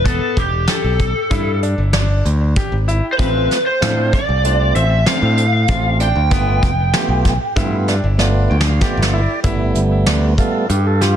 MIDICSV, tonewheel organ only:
0, 0, Header, 1, 2, 480
1, 0, Start_track
1, 0, Tempo, 625652
1, 44, Time_signature, 5, 2, 24, 8
1, 8566, End_track
2, 0, Start_track
2, 0, Title_t, "Tonewheel organ"
2, 0, Program_c, 0, 16
2, 2447, Note_on_c, 0, 57, 68
2, 2451, Note_on_c, 0, 60, 63
2, 2458, Note_on_c, 0, 65, 79
2, 2748, Note_off_c, 0, 57, 0
2, 2750, Note_off_c, 0, 60, 0
2, 2754, Note_off_c, 0, 65, 0
2, 2920, Note_on_c, 0, 57, 71
2, 2923, Note_on_c, 0, 60, 66
2, 2932, Note_on_c, 0, 62, 83
2, 3225, Note_off_c, 0, 57, 0
2, 3226, Note_off_c, 0, 60, 0
2, 3230, Note_off_c, 0, 62, 0
2, 3409, Note_on_c, 0, 57, 64
2, 3412, Note_on_c, 0, 60, 63
2, 3419, Note_on_c, 0, 65, 76
2, 3709, Note_off_c, 0, 57, 0
2, 3711, Note_off_c, 0, 60, 0
2, 3714, Note_off_c, 0, 65, 0
2, 3881, Note_on_c, 0, 57, 61
2, 3891, Note_on_c, 0, 60, 60
2, 3894, Note_on_c, 0, 62, 68
2, 4185, Note_off_c, 0, 57, 0
2, 4190, Note_off_c, 0, 60, 0
2, 4192, Note_off_c, 0, 62, 0
2, 4364, Note_on_c, 0, 57, 70
2, 4369, Note_on_c, 0, 60, 66
2, 4377, Note_on_c, 0, 65, 75
2, 4666, Note_off_c, 0, 57, 0
2, 4669, Note_off_c, 0, 60, 0
2, 4673, Note_off_c, 0, 65, 0
2, 4838, Note_on_c, 0, 57, 68
2, 4843, Note_on_c, 0, 59, 64
2, 4849, Note_on_c, 0, 65, 74
2, 5143, Note_off_c, 0, 57, 0
2, 5146, Note_off_c, 0, 59, 0
2, 5149, Note_off_c, 0, 65, 0
2, 5323, Note_on_c, 0, 57, 80
2, 5329, Note_on_c, 0, 59, 66
2, 5331, Note_on_c, 0, 65, 89
2, 5626, Note_off_c, 0, 57, 0
2, 5629, Note_off_c, 0, 59, 0
2, 5630, Note_off_c, 0, 65, 0
2, 5801, Note_on_c, 0, 57, 74
2, 5806, Note_on_c, 0, 59, 71
2, 5809, Note_on_c, 0, 65, 92
2, 6105, Note_off_c, 0, 57, 0
2, 6107, Note_off_c, 0, 59, 0
2, 6109, Note_off_c, 0, 65, 0
2, 6276, Note_on_c, 0, 57, 86
2, 6277, Note_on_c, 0, 59, 72
2, 6288, Note_on_c, 0, 65, 89
2, 6520, Note_on_c, 0, 79, 58
2, 6582, Note_off_c, 0, 57, 0
2, 6583, Note_off_c, 0, 59, 0
2, 6588, Note_off_c, 0, 65, 0
2, 6634, Note_off_c, 0, 79, 0
2, 6649, Note_on_c, 0, 77, 54
2, 6759, Note_off_c, 0, 77, 0
2, 6760, Note_on_c, 0, 57, 65
2, 6764, Note_on_c, 0, 59, 67
2, 6764, Note_on_c, 0, 74, 61
2, 6771, Note_on_c, 0, 65, 74
2, 7064, Note_off_c, 0, 57, 0
2, 7066, Note_off_c, 0, 59, 0
2, 7069, Note_off_c, 0, 65, 0
2, 7213, Note_off_c, 0, 74, 0
2, 7238, Note_on_c, 0, 55, 43
2, 7240, Note_on_c, 0, 57, 42
2, 7245, Note_on_c, 0, 59, 52
2, 7930, Note_off_c, 0, 55, 0
2, 7931, Note_off_c, 0, 57, 0
2, 7934, Note_off_c, 0, 59, 0
2, 7960, Note_on_c, 0, 55, 42
2, 7966, Note_on_c, 0, 57, 38
2, 7966, Note_on_c, 0, 59, 46
2, 7974, Note_on_c, 0, 69, 71
2, 8178, Note_off_c, 0, 55, 0
2, 8181, Note_off_c, 0, 57, 0
2, 8181, Note_off_c, 0, 59, 0
2, 8193, Note_off_c, 0, 69, 0
2, 8219, Note_on_c, 0, 67, 74
2, 8335, Note_off_c, 0, 67, 0
2, 8339, Note_on_c, 0, 69, 78
2, 8453, Note_on_c, 0, 65, 86
2, 8455, Note_off_c, 0, 69, 0
2, 8566, Note_off_c, 0, 65, 0
2, 8566, End_track
0, 0, End_of_file